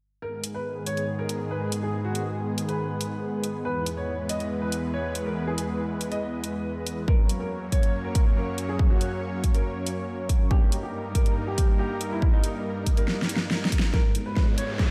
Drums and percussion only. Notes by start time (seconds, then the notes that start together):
0.44 closed hi-hat
0.86 closed hi-hat
0.97 closed hi-hat
1.29 closed hi-hat
1.72 closed hi-hat
2.15 closed hi-hat
2.58 closed hi-hat
2.69 closed hi-hat
3.01 closed hi-hat
3.44 closed hi-hat
3.86 closed hi-hat
4.29 closed hi-hat
4.40 closed hi-hat
4.72 closed hi-hat
5.15 closed hi-hat
5.58 closed hi-hat
6.01 closed hi-hat
6.12 closed hi-hat
6.44 closed hi-hat
6.87 closed hi-hat
7.08 kick
7.29 closed hi-hat
7.72 kick, closed hi-hat
7.83 closed hi-hat
8.15 kick, closed hi-hat
8.58 closed hi-hat
8.79 kick
9.01 closed hi-hat
9.44 kick, closed hi-hat
9.55 closed hi-hat
9.87 closed hi-hat
10.29 kick, closed hi-hat
10.51 kick
10.72 closed hi-hat
11.15 kick, closed hi-hat
11.26 closed hi-hat
11.58 kick, closed hi-hat
12.01 closed hi-hat
12.22 kick
12.44 closed hi-hat
12.86 kick, closed hi-hat
12.97 closed hi-hat
13.08 snare
13.22 snare
13.29 closed hi-hat
13.36 snare
13.51 snare
13.65 snare
13.72 kick, closed hi-hat
13.79 snare
13.94 kick, snare
14.15 closed hi-hat
14.36 kick, snare
14.58 closed hi-hat
14.79 kick, snare